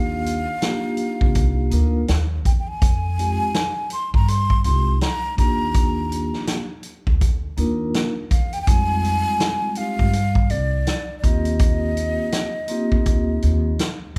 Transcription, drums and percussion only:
0.26 closed hi-hat
0.62 snare, closed hi-hat
0.97 closed hi-hat
1.21 kick
1.35 kick, closed hi-hat
1.71 closed hi-hat
2.08 snare, closed hi-hat
2.45 kick, closed hi-hat
2.82 kick, closed hi-hat
3.19 closed hi-hat
3.54 snare, closed hi-hat
3.90 closed hi-hat
4.14 kick
4.28 closed hi-hat
4.50 kick
4.64 closed hi-hat
5.01 snare, closed hi-hat
5.38 kick, closed hi-hat
5.74 kick, closed hi-hat
6.12 closed hi-hat
6.33 snare
6.47 snare, closed hi-hat
6.83 closed hi-hat
7.07 kick
7.21 kick, closed hi-hat
7.57 closed hi-hat
7.94 snare, closed hi-hat
8.31 kick, closed hi-hat
8.53 closed hi-hat
8.67 kick, closed hi-hat
9.05 closed hi-hat
9.40 snare, closed hi-hat
9.75 closed hi-hat
9.99 kick
10.13 closed hi-hat
10.35 kick
10.50 closed hi-hat
10.87 snare, closed hi-hat
11.24 kick, closed hi-hat
11.45 closed hi-hat
11.59 kick, closed hi-hat
11.97 closed hi-hat
12.32 snare, closed hi-hat
12.68 closed hi-hat
12.92 kick
13.06 kick, closed hi-hat
13.42 closed hi-hat
13.79 snare, closed hi-hat

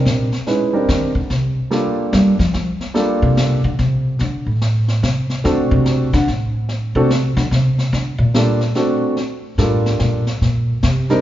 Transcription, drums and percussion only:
0.06 snare
0.32 snare
0.47 brush sweep, snare
0.89 snare
1.30 snare
1.71 brush sweep, snare
2.13 snare
2.39 snare
2.54 snare
2.81 snare
2.95 brush sweep, snare
3.37 snare
3.79 snare
4.19 brush sweep, snare
4.62 snare
4.88 snare
5.03 snare
5.30 snare
5.45 brush sweep, snare
5.86 snare
6.13 snare
6.28 snare
6.69 brush sweep, snare
7.10 snare
7.37 snare
7.52 snare
7.78 snare
7.93 brush sweep, snare
8.34 snare
8.61 snare
8.75 snare
9.17 brush sweep, snare
9.58 snare
9.86 snare
10.00 snare
10.27 snare
10.42 brush sweep, snare
10.83 snare
11.10 snare

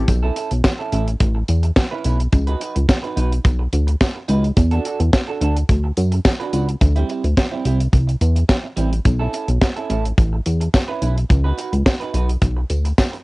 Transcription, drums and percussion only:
0.08 kick, closed hi-hat, tambourine
0.36 closed hi-hat, tambourine
0.51 closed hi-hat
0.64 kick, snare, tambourine
0.92 closed hi-hat
1.08 closed hi-hat
1.20 kick, closed hi-hat
1.48 closed hi-hat, tambourine
1.63 closed hi-hat
1.76 kick, snare, tambourine
2.04 closed hi-hat, tambourine
2.20 closed hi-hat
2.32 kick, closed hi-hat, tambourine
2.47 closed hi-hat
2.61 closed hi-hat, tambourine
2.76 closed hi-hat
2.89 kick, snare, tambourine
3.04 closed hi-hat
3.17 closed hi-hat
3.32 closed hi-hat
3.45 kick, closed hi-hat, tambourine
3.73 closed hi-hat, tambourine
3.88 closed hi-hat
4.01 kick, snare, tambourine
4.28 closed hi-hat, tambourine
4.44 closed hi-hat
4.57 kick, closed hi-hat, tambourine
4.71 closed hi-hat
4.85 closed hi-hat, tambourine
5.00 closed hi-hat
5.13 kick, snare, tambourine
5.41 closed hi-hat
5.56 closed hi-hat
5.69 kick, closed hi-hat
5.97 closed hi-hat, tambourine
6.12 closed hi-hat
6.25 kick, snare, tambourine
6.40 closed hi-hat
6.53 closed hi-hat, tambourine
6.69 closed hi-hat
6.81 kick, closed hi-hat, tambourine
6.96 closed hi-hat
7.09 closed hi-hat, tambourine
7.24 closed hi-hat
7.37 kick, snare, tambourine
7.66 closed hi-hat, tambourine
7.81 closed hi-hat
7.93 kick, closed hi-hat
8.09 closed hi-hat
8.21 closed hi-hat, tambourine
8.36 closed hi-hat
8.49 kick, snare, tambourine
8.77 closed hi-hat, tambourine
8.93 closed hi-hat
9.05 kick, closed hi-hat, tambourine
9.33 closed hi-hat, tambourine
9.48 closed hi-hat
9.62 kick, snare, tambourine
9.77 closed hi-hat
9.90 closed hi-hat, tambourine
10.05 closed hi-hat
10.18 kick, closed hi-hat, tambourine
10.46 closed hi-hat, tambourine
10.61 closed hi-hat
10.74 kick, snare, tambourine
11.02 closed hi-hat, tambourine
11.18 closed hi-hat
11.30 kick, closed hi-hat, tambourine
11.58 closed hi-hat, tambourine
11.73 closed hi-hat
11.86 kick, snare, tambourine
12.01 closed hi-hat
12.14 closed hi-hat
12.29 closed hi-hat
12.42 kick, closed hi-hat, tambourine
12.70 closed hi-hat, tambourine
12.85 closed hi-hat
12.98 kick, snare, tambourine
13.13 closed hi-hat

